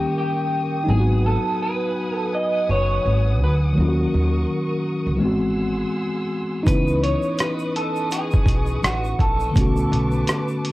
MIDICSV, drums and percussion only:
0, 0, Header, 1, 2, 480
1, 0, Start_track
1, 0, Tempo, 722892
1, 585, Time_signature, 4, 2, 24, 8
1, 7118, End_track
2, 0, Start_track
2, 0, Title_t, "Drums"
2, 4427, Note_on_c, 9, 36, 113
2, 4427, Note_on_c, 9, 82, 70
2, 4434, Note_on_c, 9, 42, 83
2, 4493, Note_off_c, 9, 82, 0
2, 4494, Note_off_c, 9, 36, 0
2, 4501, Note_off_c, 9, 42, 0
2, 4566, Note_on_c, 9, 82, 52
2, 4633, Note_off_c, 9, 82, 0
2, 4673, Note_on_c, 9, 42, 50
2, 4739, Note_off_c, 9, 42, 0
2, 4798, Note_on_c, 9, 82, 48
2, 4865, Note_off_c, 9, 82, 0
2, 4903, Note_on_c, 9, 82, 73
2, 4906, Note_on_c, 9, 42, 70
2, 4917, Note_on_c, 9, 37, 103
2, 4970, Note_off_c, 9, 82, 0
2, 4972, Note_off_c, 9, 42, 0
2, 4983, Note_off_c, 9, 37, 0
2, 5041, Note_on_c, 9, 82, 50
2, 5107, Note_off_c, 9, 82, 0
2, 5153, Note_on_c, 9, 42, 67
2, 5220, Note_off_c, 9, 42, 0
2, 5285, Note_on_c, 9, 82, 42
2, 5352, Note_off_c, 9, 82, 0
2, 5385, Note_on_c, 9, 82, 71
2, 5393, Note_on_c, 9, 42, 81
2, 5452, Note_off_c, 9, 82, 0
2, 5459, Note_off_c, 9, 42, 0
2, 5518, Note_on_c, 9, 82, 51
2, 5535, Note_on_c, 9, 36, 87
2, 5584, Note_off_c, 9, 82, 0
2, 5602, Note_off_c, 9, 36, 0
2, 5615, Note_on_c, 9, 36, 95
2, 5622, Note_on_c, 9, 82, 46
2, 5633, Note_on_c, 9, 42, 66
2, 5682, Note_off_c, 9, 36, 0
2, 5689, Note_off_c, 9, 82, 0
2, 5699, Note_off_c, 9, 42, 0
2, 5754, Note_on_c, 9, 82, 41
2, 5820, Note_off_c, 9, 82, 0
2, 5869, Note_on_c, 9, 82, 68
2, 5872, Note_on_c, 9, 37, 108
2, 5872, Note_on_c, 9, 42, 62
2, 5935, Note_off_c, 9, 82, 0
2, 5938, Note_off_c, 9, 42, 0
2, 5939, Note_off_c, 9, 37, 0
2, 6005, Note_on_c, 9, 82, 48
2, 6071, Note_off_c, 9, 82, 0
2, 6104, Note_on_c, 9, 36, 88
2, 6105, Note_on_c, 9, 82, 43
2, 6111, Note_on_c, 9, 42, 66
2, 6170, Note_off_c, 9, 36, 0
2, 6172, Note_off_c, 9, 82, 0
2, 6177, Note_off_c, 9, 42, 0
2, 6242, Note_on_c, 9, 82, 48
2, 6308, Note_off_c, 9, 82, 0
2, 6346, Note_on_c, 9, 82, 66
2, 6347, Note_on_c, 9, 36, 112
2, 6353, Note_on_c, 9, 42, 82
2, 6412, Note_off_c, 9, 82, 0
2, 6413, Note_off_c, 9, 36, 0
2, 6420, Note_off_c, 9, 42, 0
2, 6484, Note_on_c, 9, 82, 52
2, 6550, Note_off_c, 9, 82, 0
2, 6594, Note_on_c, 9, 42, 52
2, 6660, Note_off_c, 9, 42, 0
2, 6715, Note_on_c, 9, 82, 45
2, 6781, Note_off_c, 9, 82, 0
2, 6822, Note_on_c, 9, 42, 66
2, 6824, Note_on_c, 9, 82, 74
2, 6833, Note_on_c, 9, 37, 106
2, 6888, Note_off_c, 9, 42, 0
2, 6890, Note_off_c, 9, 82, 0
2, 6899, Note_off_c, 9, 37, 0
2, 6959, Note_on_c, 9, 82, 51
2, 7025, Note_off_c, 9, 82, 0
2, 7071, Note_on_c, 9, 42, 72
2, 7118, Note_off_c, 9, 42, 0
2, 7118, End_track
0, 0, End_of_file